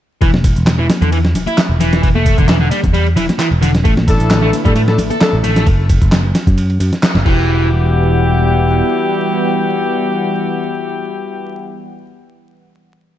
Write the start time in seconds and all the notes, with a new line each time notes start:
0.21 E1 E3, kick, closed hi-hat, ride
0.34 snare, high conga
0.44 kick, closed hi-hat, ride
0.56 E1, closed hi-hat
0.67 snare, clap, closed hi-hat, ride
0.79 E3
0.90 snare, closed hi-hat, ride, high conga
1.02 E2 D3, closed hi-hat, low conga
1.12 E3, closed hi-hat, ride
1.25 snare
1.35 E1, closed hi-hat, ride, low conga
1.47 E4, closed hi-hat, ride, high conga
1.58 snare, clap, closed hi-hat, ride
1.69 E1
1.80 E3, closed hi-hat, ride, low conga
1.93 snare, closed hi-hat
2.03 E1 E3, kick, closed hi-hat, ride
2.15 A3, high conga
2.26 kick, closed hi-hat, ride
2.38 E1 D3, kick, closed hi-hat
2.48 E3, snare, clap, closed hi-hat, ride
2.60 D3
2.71 G3, closed hi-hat, ride, high conga
2.84 E2, kick, closed hi-hat, low conga
2.94 G3, closed hi-hat, ride
3.07 ride
3.16 E1 E3, closed hi-hat, ride, low conga
3.29 snare, closed hi-hat, high conga
3.39 E3, clap, closed hi-hat, ride
3.51 E1, ride
3.62 D3, closed hi-hat, ride, low conga
3.75 snare, closed hi-hat
3.85 A1 D3 E3 A3 E4, kick, closed hi-hat, ride
3.97 snare, high conga
4.08 D4 E4 A4, kick, closed hi-hat, ride
4.20 A1, closed hi-hat
4.31 snare, clap, closed hi-hat, ride
4.42 A3 D4 E4 A4
4.53 closed hi-hat, ride, high conga
4.65 A2 G3 D4 E4 A4, kick, closed hi-hat, low conga
4.76 A3, closed hi-hat, ride
4.88 D4 E4 A4, snare
4.98 A1, closed hi-hat, ride, low conga
5.10 A4, closed hi-hat, ride, high conga
5.21 D4 E4 A4, snare, clap, closed hi-hat, ride
5.33 A1
5.44 A3, closed hi-hat, ride, low conga
5.56 D4 E4 A4, snare, closed hi-hat
5.67 F#1, kick, closed hi-hat, ride
5.89 kick, closed hi-hat, ride
6.01 F#1, kick, closed hi-hat
6.12 snare, clap, closed hi-hat, ride
6.35 snare, closed hi-hat, ride
6.47 F#2, kick, closed hi-hat
6.58 closed hi-hat, ride
6.70 ride
6.80 F#2, closed hi-hat, ride
6.93 snare, closed hi-hat
7.03 snare, clap, closed hi-hat, ride
7.15 F#1, snare
7.26 E1 E3 G3 B3 E4 F#4 G4 F#5, kick, crash